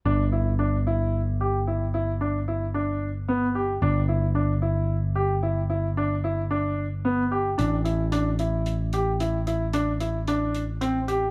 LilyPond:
<<
  \new Staff \with { instrumentName = "Grand piano" } { \time 7/4 \key g \major \tempo 4 = 112 d'8 e'8 d'8 e'4 g'8 e'8 e'8 d'8 e'8 d'4 b8 g'8 | d'8 e'8 d'8 e'4 g'8 e'8 e'8 d'8 e'8 d'4 b8 g'8 | d'8 e'8 d'8 e'4 g'8 e'8 e'8 d'8 e'8 d'4 c'8 g'8 | }
  \new Staff \with { instrumentName = "Picked electric bass" } { \clef bass \time 7/4 \key g \major g,,1.~ g,,4 | g,,1.~ g,,4 | a,,1.~ a,,4 | }
  \new DrumStaff \with { instrumentName = "Drums" } \drummode { \time 7/4 r4 r4 r4 r4 r4 r4 r4 | r4 r4 r4 r4 r4 r4 r4 | hh8 hh8 hh8 hh8 hh8 hh8 hh8 hh8 hh8 hh8 hh8 hh8 hh8 hh8 | }
>>